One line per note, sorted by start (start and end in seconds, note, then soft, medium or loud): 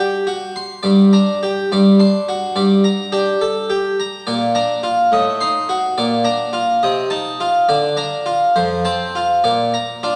0.00 0.27 G4 soft
0.27 0.57 F#4 soft
0.56 0.84 C6 soft
0.83 1.12 G2 medium
0.83 1.14 D5 soft
1.13 1.43 D4 soft
1.13 1.43 A#5 medium
1.43 1.71 G4 soft
1.72 1.99 G2 medium
1.72 2.02 D5 soft
2.00 2.29 D4 soft
2.00 2.29 C6 medium
2.29 2.56 F#4 soft
2.56 2.83 G2 medium
2.56 2.86 D5 medium
2.84 3.14 A#5 medium
3.12 3.43 D4 medium
3.12 3.43 G4 medium
3.41 3.70 A4 soft
3.70 4.00 G4 soft
4.00 4.28 A#5 medium
4.27 4.55 A#2 medium
4.27 4.57 D5 medium
4.55 4.85 D4 soft
4.55 4.85 A#5 medium
4.83 5.12 F4 medium
5.12 5.39 A2 medium
5.12 5.42 D#5 medium
5.41 5.70 D#4 soft
5.41 5.70 C6 medium
5.69 5.97 F#4 medium
5.98 6.25 A#2 medium
5.98 6.27 D5 medium
6.24 6.54 D4 soft
6.24 6.54 A#5 medium
6.53 6.81 F4 soft
6.83 7.10 C3 medium
6.83 7.12 D#5 medium
7.10 7.40 D#4 medium
7.10 7.40 A5 medium
7.40 7.68 F4 medium
7.69 7.96 D3 medium
7.69 7.98 D5 medium
7.97 8.27 D4 soft
7.97 8.27 A#5 medium
8.26 8.55 F4 medium
8.56 8.84 F2 medium
8.56 8.86 C5 medium
8.85 9.16 C4 soft
8.85 9.16 A5 medium
9.15 9.45 F4 soft
9.44 9.73 A#2 medium
9.44 9.76 D5 soft
9.74 10.05 A#5 medium
10.03 10.16 D4 soft
10.03 10.16 F4 soft